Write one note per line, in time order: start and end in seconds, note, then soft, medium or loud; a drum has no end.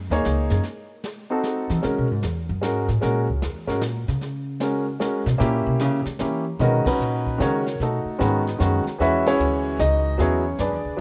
0.10 0.24 D#2 medium
0.10 0.62 A#3 medium
0.10 0.62 D#4 medium
0.10 0.62 G#4 medium
0.10 0.62 C#5 medium
0.10 snare soft
0.25 0.50 C#2 medium
0.25 snare medium
0.50 0.59 F#2 loud
0.50 snare soft
0.64 brush sweep soft
0.64 snare soft
1.04 snare medium
1.30 1.81 C4 medium
1.30 1.81 D#4 medium
1.30 1.81 F#4 medium
1.30 1.82 A4 medium
1.44 snare medium
1.70 1.83 E3 medium
1.70 snare soft
1.82 1.97 D#3 medium
1.82 2.06 G#3 medium
1.82 2.07 C#4 medium
1.82 2.07 F#4 soft
1.82 2.07 A#4 medium
1.82 brush sweep medium
1.82 snare soft
1.98 2.11 B2 medium
2.11 2.23 G#2 medium
2.23 2.49 E2 medium
2.23 snare medium
2.49 2.64 F#2 medium
2.61 2.88 G#2 medium
2.61 2.86 G#3 medium
2.61 2.86 C#4 soft
2.61 2.86 F#4 medium
2.61 2.87 A#4 medium
2.61 snare medium
2.88 3.02 A2 medium
2.88 snare medium
3.01 3.28 A#2 loud
3.01 3.25 G#3 medium
3.01 3.26 C#4 medium
3.01 3.26 F#4 medium
3.01 3.26 A#4 medium
3.01 brush sweep medium
3.01 snare soft
3.29 3.41 C#2 medium
3.42 3.67 E2 medium
3.42 snare medium
3.67 3.82 G#2 medium
3.67 3.80 G#3 medium
3.67 3.80 C#4 medium
3.67 3.81 F#4 medium
3.67 3.80 A#4 medium
3.67 snare medium
3.81 4.07 A#2 medium
3.81 snare medium
4.08 4.97 C#3 loud
4.08 snare soft
4.21 brush sweep medium
4.21 snare soft
4.60 4.84 G#3 soft
4.60 4.85 C#4 medium
4.60 4.85 F#4 soft
4.60 4.85 A#4 medium
4.60 snare medium
5.00 5.24 G#3 medium
5.00 5.24 C#4 medium
5.00 5.24 F#4 medium
5.00 5.24 A#4 medium
5.00 snare medium
5.26 5.40 B2 loud
5.26 snare medium
5.38 5.66 A#2 loud
5.38 6.00 A#3 medium
5.38 6.00 C#4 medium
5.38 6.01 E4 medium
5.38 6.01 G4 medium
5.38 brush sweep medium
5.38 snare medium
5.66 5.81 B2 medium
5.80 6.05 C#3 medium
5.80 snare medium
6.05 6.19 D#3 medium
6.05 snare medium
6.19 6.51 E3 medium
6.19 6.43 A#3 medium
6.19 6.44 C#4 medium
6.19 6.44 E4 soft
6.19 6.44 G4 medium
6.19 snare medium
6.59 6.84 B2 medium
6.59 6.83 D#3 medium
6.59 6.84 G#3 medium
6.59 6.84 C#4 medium
6.59 6.85 D#4 medium
6.59 6.85 F#4 medium
6.59 6.86 A#4 medium
6.59 6.86 B4 medium
6.59 6.86 D#5 medium
6.59 brush sweep soft
6.59 kick soft
6.59 snare soft
6.86 7.36 C#4 medium
6.86 7.36 D#4 medium
6.86 7.37 F#4 medium
6.86 7.36 B4 medium
6.86 muted upright bass stroke soft
6.86 kick medium
6.86 crash medium
6.99 7.38 A#2 medium
6.99 hi-hat pedal medium
7.27 kick medium
7.38 7.78 C#3 medium
7.38 7.62 D#3 medium
7.38 7.63 G#3 medium
7.38 7.63 C#4 medium
7.38 7.64 F#4 medium
7.38 7.78 C#5 medium
7.38 kick soft
7.38 snare medium
7.38 hi-hat pedal medium
7.43 7.78 A#4 medium
7.67 snare soft
7.80 8.04 B2 medium
7.80 8.18 A3 soft
7.80 8.18 D#4 medium
7.80 8.18 F#4 medium
7.80 8.18 A4 medium
7.80 brush sweep medium
7.80 kick soft
7.80 snare soft
8.05 muted upright bass stroke soft
8.19 8.58 G#2 medium
8.19 8.43 D#3 medium
8.19 8.42 G#3 medium
8.19 8.82 B3 medium
8.19 8.43 C#4 medium
8.19 8.83 D#4 medium
8.19 8.43 F#4 medium
8.19 8.82 B4 medium
8.19 kick soft
8.19 snare medium
8.19 hi-hat pedal medium
8.47 snare soft
8.59 8.84 F#2 medium
8.59 8.83 D#3 medium
8.59 8.83 G#3 medium
8.59 8.83 C#4 medium
8.59 8.83 F#4 medium
8.59 kick soft
8.59 snare medium
8.59 hi-hat pedal medium
8.86 muted upright bass stroke soft
8.86 snare soft
8.98 9.38 E2 medium
8.98 10.10 E3 medium
8.98 10.11 G#3 medium
8.98 9.26 C#4 medium
8.98 9.26 E4 medium
8.98 10.11 F#4 medium
8.98 9.26 B4 medium
8.98 9.26 C#5 medium
8.98 9.25 E5 medium
8.98 brush sweep soft
8.98 kick soft
8.98 snare soft
9.26 9.76 C#4 medium
9.26 9.76 E4 medium
9.26 9.76 G#4 medium
9.26 9.76 C#5 medium
9.26 snare medium
9.26 ride medium
9.39 9.78 D2 medium
9.39 hi-hat pedal medium
9.79 10.18 C#2 medium
9.79 10.17 D#4 medium
9.79 10.17 D#5 medium
9.79 kick soft
9.79 snare medium
9.79 hi-hat pedal medium
10.18 10.57 E2 medium
10.18 10.42 F#3 medium
10.18 10.42 B3 medium
10.18 10.43 E4 medium
10.18 10.43 G#4 medium
10.18 10.58 C#5 medium
10.18 brush sweep soft
10.18 kick soft
10.18 snare soft
10.22 10.58 C#4 medium
10.58 10.71 F#2 medium
10.58 11.00 D4 medium
10.58 10.97 G#4 medium
10.58 11.00 B4 medium
10.58 11.00 D5 medium
10.58 kick soft
10.58 snare medium
10.58 hi-hat pedal medium
10.71 10.84 E2 medium
10.85 10.97 D2 medium
10.97 11.00 F#3 medium
10.97 11.00 B3 medium